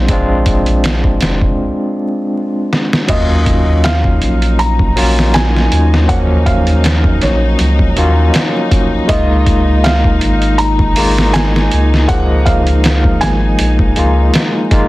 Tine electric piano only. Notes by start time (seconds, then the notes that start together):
Already playing: G#3 C4 D4 F4
0.08 G#3 C4 D4
0.13 F4
3.08 F#3 A#3 C#4
3.13 F4
4.96 F#3 A#3 C#4 F4
6.08 F#3 A#3 C#4
6.13 F3
7.96 F#3 A#3 C#4 F4
9.08 G#3 A#3 D#4
9.12 F4
10.97 G#3 A#3 D#4 F4
12.08 G#3 A#3 D#4
12.13 F3
13.96 G#3 A#3 D#4 F4
14.71 G#3 A#3 D#4 F4